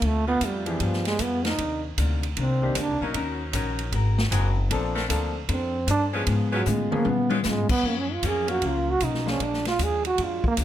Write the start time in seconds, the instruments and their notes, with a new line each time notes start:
0.02 upright bass D2, hollow-body jazz guitar D3 A3 C4 F4, trombone A3, kick, ride
0.27 saxophone section D3 A3 C4 F4, trombone B3
0.41 upright bass F2, hollow-body jazz guitar D3 A3 C4 F4, kick, hi-hat pedal, ride
0.45 trombone G3
0.66 trombone E3, grand piano F3 B3 D4 G4 G#4, ride
0.80 upright bass G2, trombone F3, hollow-body jazz guitar G3 B3 F4 G#4, kick, ride
0.93 snare
1.05 trombone G#3, snare, ride
1.19 upright bass F2, hollow-body jazz guitar G3 B3 F4 G#4, trombone B3, kick, hi-hat pedal, ride
1.45 saxophone section D#3 C4 D4 A#4, trombone D#4, snare, ride
1.58 upright bass D#2, hollow-body jazz guitar C3 D#3 A#3 D4, kick, ride
1.98 upright bass D2, hollow-body jazz guitar C3 D#3 A#3 D4, kick, hi-hat pedal, ride
2.23 ride
2.37 upright bass C2, hollow-body jazz guitar C3 D#3 A#3 D4, kick, ride
2.41 trombone C4
2.62 grand piano D#3 A#3 C4 D4 G4
2.75 upright bass D2, hollow-body jazz guitar C3 D#3 A#3 D4, kick, hi-hat pedal, ride
2.80 trombone D4
2.88 upright bass C2
3.01 upright bass A#1, grand piano F#3 A#3 C#4 D#4 A#4, saxophone section F#3 C#4 D#4 A#4
3.13 upright bass D#2, hollow-body jazz guitar D#3 C#4 F#4 A#4, kick, ride
3.53 upright bass A#1, hollow-body jazz guitar D#3 C#4 F#4 A#4, saxophone section F#3 C#4 D#4 A#4, kick, hi-hat pedal, ride
3.79 ride
3.92 upright bass G#1, hollow-body jazz guitar G#3 C4 F#4 A#4, kick, ride
4.18 snare
4.31 upright bass F#1, hollow-body jazz guitar G#3 C4 F#4 A#4, saxophone section G#3 C4 F#4 G#4, kick, hi-hat pedal, ride
4.69 upright bass A#1, grand piano F3 A#3 C4 D4 A4, hollow-body jazz guitar A#3 D4 A4 C5, kick, ride
4.95 saxophone section A3 C4 D4 A#4, snare
5.08 upright bass D2, grand piano F3 A#3 C4 D4 A4, hollow-body jazz guitar A#3 D4 A4 C5, kick, hi-hat pedal, ride
5.49 upright bass F2, hollow-body jazz guitar A#3 D4 A4 C5, trombone C4, kick, ride
5.87 upright bass G2, hollow-body jazz guitar A#3 D4 A4 C5, trombone D4, kick, hi-hat pedal, ride
6.13 grand piano F3 G#3 B3 C#4 G#4, saxophone section G#3 C#4 F4 B4
6.26 upright bass G#2, hollow-body jazz guitar C#3 G#3 B3 F4, kick, ride
6.52 trombone F#3, saxophone section G#3 C#4 F4 B4
6.66 upright bass A2, hollow-body jazz guitar C#3 G#3 B3 F4, hi-hat pedal, mid tom
6.70 trombone G#3
6.91 grand piano F3 G#3 B3 C#4 G#4, trombone A#3, muted upright bass stroke, mid tom
7.04 upright bass A#2, hollow-body jazz guitar C#3 G#3 B3 F4, trombone B3, high tom
7.29 trombone D#3, saxophone section G#3 C#4 F4 B4, high tom
7.43 upright bass G#2, hollow-body jazz guitar C#3 G#3 B3 F4, snare, hi-hat pedal
7.47 trombone G#3
7.69 trombone B3, muted upright bass stroke, kick, crash
7.82 hollow-body jazz guitar F#2 F3 A#3 C#4, upright bass F#2, kick
7.86 trombone A#3
8.00 trombone C#4
8.13 trombone F4
8.23 upright bass F2, hollow-body jazz guitar F#2 F3 A#3 C#4, saxophone section A#3 C#4 F4 A#4, trombone G#4, kick, hi-hat pedal, ride
8.47 grand piano F#3 A#3 C#4 F4 A#4, trombone F#4, ride
8.61 upright bass C#2, hollow-body jazz guitar F#2 F3 A#3 C#4, kick, ride
8.66 trombone F4
8.90 trombone F#4
9.00 upright bass B1, hollow-body jazz guitar F#2 F3 A#3 C#4, kick, hi-hat pedal, ride
9.05 trombone D#4
9.14 snare
9.26 grand piano F3 G#3 A#3 D4 F4, trombone C#4, snare
9.39 upright bass A#1, hollow-body jazz guitar A#2 F3 G#3 D4, kick, ride
9.44 trombone D4
9.53 snare
9.65 trombone F4, snare, ride
9.79 upright bass D#2, hollow-body jazz guitar A#2 F3 G#3 D4, kick, hi-hat pedal, ride
9.83 trombone G#4
10.05 trombone F#4, ride
10.18 upright bass F2, hollow-body jazz guitar A#2 F3 G#3 D4, kick, ride
10.23 trombone F4
10.44 trombone A#3, muted upright bass stroke, kick
10.57 upright bass D2, hollow-body jazz guitar A#2 F3 G#3 D4, kick, hi-hat pedal, ride